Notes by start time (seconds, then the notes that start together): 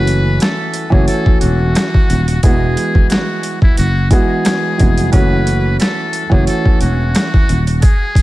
Already playing: F#1 E3 A3 C#4 F#4 B4
0.07 closed hi-hat
0.40 A4, cross-stick, snare, closed hi-hat
0.74 closed hi-hat
0.90 F#1 E3 A3 C#4 F#4 G#4, kick
1.08 A4, closed hi-hat
1.26 muted fretless electric bass stroke, kick
1.41 E1 F#4, closed hi-hat
1.75 cross-stick, snare, closed hi-hat
1.94 kick
2.10 D#1, closed hi-hat
2.28 closed hi-hat
2.43 E1 E3 G#3 B3 F#4 G#4, kick, closed hi-hat
2.77 closed hi-hat
2.95 kick
3.10 F#4, cross-stick, snare, closed hi-hat
3.43 closed hi-hat
3.62 E4, kick
3.77 F#1 F#4, closed hi-hat
4.11 E3 G#3 B3 F#4 G#4, kick, closed hi-hat
4.45 cross-stick, snare, closed hi-hat
4.78 F1 E3 G#3 B3 F#4, kick, closed hi-hat
4.98 closed hi-hat
5.12 F#1 E3 A3 C#4 F#4 B4, kick, closed hi-hat
5.47 closed hi-hat
5.80 A4, cross-stick, snare, closed hi-hat
6.13 closed hi-hat
6.30 F#1 E3 A3 C#4 F#4 G#4, kick
6.47 A4, closed hi-hat
6.66 muted fretless electric bass stroke, kick
6.81 E1 F#4, closed hi-hat
7.15 cross-stick, snare, closed hi-hat
7.34 kick
7.49 D#1, closed hi-hat
7.67 closed hi-hat
7.82 G#4, kick, closed hi-hat
8.15 kick, closed hi-hat